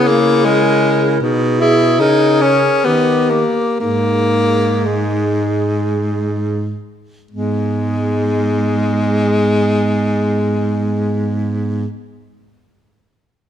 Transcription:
Already playing: C#3 E4 G#4
0.08 A#3
0.45 G#3 A#4
1.21 B2 D#4 G#4
1.60 E4 G#4
1.99 C#3 D#4 A#4
2.42 C#4
2.84 D#3 B3 G4
3.30 A#3
3.80 G#2 A#3 D#4 G#4
4.87 G#3
7.31 G#2 G#3 B3 G#4

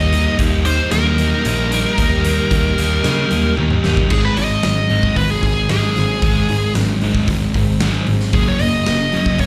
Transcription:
Already playing: D#2 D#3 G3 A#3 D#4 G4 D#5
0.12 D#3 G3 A#3 D#4 G4, closed hi-hat
0.39 D#2 D#3 G3 A#3 D#4 G4, kick, closed hi-hat
0.64 D#3 G3 A#3 D#4 G4 C5, closed hi-hat
0.91 D#2 D#3 G3 A#3 D#4 G4 A#4, snare, closed hi-hat
1.17 D#3 G3 A#3 D#4 G4, closed hi-hat
1.45 A#1 D#3 G3 A#3 D#4 G4, closed hi-hat
1.71 D#3 G3 A#3 D#4 G4, closed hi-hat
1.98 D#2 D#3 G3 A#3 D#4 G4, kick, closed hi-hat
2.24 D#3 G3 A#3 D#4 G4, closed hi-hat
2.51 D#2 D#3 G3 A#3 D#4 G4, kick, closed hi-hat
2.78 D#2 D#3 G3 A#3 D#4 G4, closed hi-hat
3.04 C#3 D#3 G3 A#3 D#4 G4, snare, closed hi-hat
3.30 D#2 D#3 G3 A#3 D#4 G4, closed hi-hat
3.57 D#2 D#3 G3 A#3 D#4 G4, high tom
3.70 mid tom
3.83 D#2 D#3 G3 A#3 D#4 G4, snare
3.97 kick
4.10 G#1 G#2 D#3 G#3 G#4, kick, crash
4.25 B4
4.36 G#1 G#2 D#3 G#3 D#5, open hi-hat
4.63 G#1 G#2 D#3 C4, snare, open hi-hat
4.90 G#1 G#2 D#3 G#3 D#4, open hi-hat
5.03 kick
5.16 G#1 G#2 D#3 G#3 B4, kick, open hi-hat
5.30 G#4
5.43 G#1 G#2 D#3 C4, kick, open hi-hat
5.69 G#1 G#2 D#3 G#3 G#4, snare, open hi-hat
5.96 G#1 G#2 D#3 C4, snare, open hi-hat
6.22 G#1 G#2 D#3 G#3, kick, open hi-hat
6.49 G#1 G#2 D#3 G#3, open hi-hat
6.75 G#1 G#2 D#3 C4, snare, open hi-hat
7.01 G#1 G#2 D#3 G#3 D#4, open hi-hat
7.15 kick
7.28 G#1 G#2 D#3 G#3, kick, open hi-hat
7.54 G#1 G#2 D#3 C4, kick, open hi-hat
7.80 G#1 G#2 D#3 G#3, snare, open hi-hat
8.07 G#1 G#2 D#3 C4, open hi-hat
8.20 snare
8.33 F#1 F#3 A#3 C#4 G#4, kick, open hi-hat
8.48 C#5
8.59 F#1 F#3 A#3 D#5, open hi-hat
8.86 F#1 F#3 A#3 C#4, snare, open hi-hat
9.12 F#1 F#3 A#3 C#4 F#4, open hi-hat
9.26 kick
9.39 F#1 F#3 A#3 C#5, kick, open hi-hat

